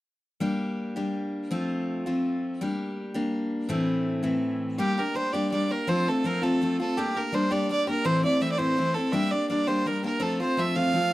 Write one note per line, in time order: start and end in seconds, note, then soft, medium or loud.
0.40 0.96 G3 medium
0.40 0.95 A#3 medium
0.40 0.95 D4 medium
0.40 0.95 G4 medium
0.96 1.50 G3 soft
0.96 1.51 A#3 medium
0.96 1.51 D4 soft
0.96 1.51 G4 medium
1.51 2.06 F3 medium
1.51 2.05 A3 medium
1.51 2.06 C4 medium
1.51 2.05 F4 medium
2.06 2.61 F3 soft
2.06 2.61 A3 medium
2.06 2.61 C4 soft
2.06 2.61 F4 medium
2.61 3.15 G3 medium
2.61 3.14 A#3 medium
2.61 3.14 D4 medium
2.61 3.13 G4 medium
3.14 3.69 G3 soft
3.14 3.69 A#3 medium
3.14 3.69 D4 medium
3.14 3.69 G4 medium
3.69 4.23 A2 medium
3.69 4.22 E3 medium
3.69 4.22 A3 medium
3.69 4.22 C4 medium
3.69 4.21 E4 medium
4.23 4.79 A2 medium
4.23 4.78 E3 medium
4.23 4.78 A3 medium
4.23 4.78 C4 medium
4.23 4.78 E4 medium
4.78 4.98 G3 medium
4.78 4.98 A#3 medium
4.78 4.98 D4 medium
4.78 5.00 G4 medium
4.78 4.96 G4 medium
4.98 5.14 A#3 soft
4.98 5.15 D4 soft
4.98 5.15 G4 soft
4.98 5.17 A#4 medium
5.14 5.33 G3 soft
5.14 5.33 A#3 medium
5.14 5.33 D4 medium
5.14 5.32 G4 medium
5.14 5.34 C5 medium
5.33 5.51 G3 soft
5.33 5.51 A#3 soft
5.33 5.52 D4 medium
5.33 5.53 G4 medium
5.33 5.51 D5 medium
5.51 5.70 G3 soft
5.51 5.70 A#3 medium
5.51 5.69 D4 medium
5.51 5.68 G4 soft
5.51 5.72 D5 medium
5.69 5.87 A#3 soft
5.69 5.87 D4 soft
5.69 5.87 G4 soft
5.69 5.90 A#4 medium
5.87 6.07 F3 medium
5.87 6.07 A3 medium
5.87 6.07 C4 medium
5.87 6.06 F4 medium
5.87 6.10 C5 medium
6.07 6.24 A3 soft
6.07 6.24 C4 soft
6.07 6.25 F4 soft
6.07 6.28 A4 medium
6.24 6.42 F3 medium
6.24 6.42 A3 medium
6.24 6.42 C4 medium
6.24 6.41 F4 medium
6.24 6.44 A#4 medium
6.42 6.60 F3 soft
6.42 6.62 A3 soft
6.42 6.61 C4 medium
6.42 6.61 F4 medium
6.42 6.79 A4 medium
6.61 6.79 F3 medium
6.61 6.79 A3 medium
6.61 6.79 C4 soft
6.61 6.78 F4 medium
6.80 6.97 A3 soft
6.80 6.97 C4 soft
6.80 6.97 F4 medium
6.80 6.99 A4 medium
6.97 7.16 G3 medium
6.97 7.16 A#3 medium
6.97 7.15 D4 medium
6.97 7.18 G4 medium
6.97 7.14 G4 medium
7.15 7.32 A#3 soft
7.15 7.33 D4 soft
7.15 7.33 G4 soft
7.15 7.36 A#4 medium
7.32 7.50 G3 medium
7.32 7.51 A#3 medium
7.32 7.50 D4 medium
7.32 7.49 G4 medium
7.32 7.53 C5 medium
7.51 7.68 G3 soft
7.51 7.69 A#3 soft
7.51 7.70 D4 medium
7.51 7.70 G4 medium
7.51 7.70 D5 medium
7.69 7.87 G3 soft
7.69 7.88 A#3 medium
7.69 7.87 D4 medium
7.69 7.86 G4 medium
7.69 7.87 D5 medium
7.87 8.05 A#3 soft
7.87 8.05 D4 soft
7.87 8.05 G4 soft
7.87 8.07 A#4 medium
8.04 8.24 A2 medium
8.04 8.24 E3 medium
8.04 8.24 A3 medium
8.04 8.24 C4 medium
8.04 8.22 E4 medium
8.04 8.24 C5 medium
8.24 8.41 A3 soft
8.24 8.40 C4 soft
8.24 8.41 E4 soft
8.24 8.43 D5 medium
8.41 8.58 E3 medium
8.41 8.57 A3 medium
8.41 8.57 C4 medium
8.41 8.57 E4 medium
8.41 8.51 E5 medium
8.52 8.59 D5 medium
8.58 8.78 A2 soft
8.58 8.76 E3 soft
8.58 8.77 A3 medium
8.58 8.77 C4 soft
8.58 8.78 E4 medium
8.58 8.96 C5 medium
8.77 8.95 E3 soft
8.77 8.95 A3 soft
8.77 8.96 C4 soft
8.77 8.95 E4 medium
8.94 9.13 A3 soft
8.94 9.12 C4 soft
8.94 9.13 E4 soft
8.94 9.13 A4 medium
9.12 9.32 G3 medium
9.12 9.32 A#3 medium
9.12 9.32 D4 medium
9.12 9.31 G4 medium
9.12 9.33 E5 medium
9.31 9.49 D4 soft
9.31 9.49 G4 soft
9.31 9.49 D5 medium
9.49 9.67 G3 medium
9.49 9.67 A#3 medium
9.49 9.66 D4 medium
9.49 9.66 G4 medium
9.49 9.69 D5 medium
9.67 9.85 G3 soft
9.67 9.85 A#3 soft
9.67 9.86 D4 soft
9.67 9.86 G4 soft
9.67 9.88 C5 medium
9.86 10.04 G3 soft
9.86 10.03 A#3 soft
9.86 10.02 D4 medium
9.86 10.02 G4 medium
9.86 10.04 A#4 medium
10.03 10.19 A#3 soft
10.03 10.20 D4 soft
10.03 10.20 G4 soft
10.03 10.24 A#4 medium
10.20 10.40 F3 medium
10.20 10.40 A3 medium
10.20 10.40 C4 medium
10.20 10.39 F4 medium
10.20 10.40 A4 medium
10.40 10.57 A3 soft
10.40 10.57 C4 soft
10.40 10.58 F4 soft
10.40 10.60 C5 medium
10.57 10.75 F3 medium
10.57 10.74 A3 medium
10.57 10.74 C4 medium
10.57 10.74 F4 medium
10.57 10.77 E5 medium
10.75 10.92 F3 medium
10.75 10.94 A3 soft
10.75 10.93 C4 medium
10.75 10.94 F4 medium
10.75 11.13 F5 medium
10.94 11.12 F3 medium
10.94 11.12 A3 soft
10.94 11.12 C4 medium
10.94 11.10 F4 medium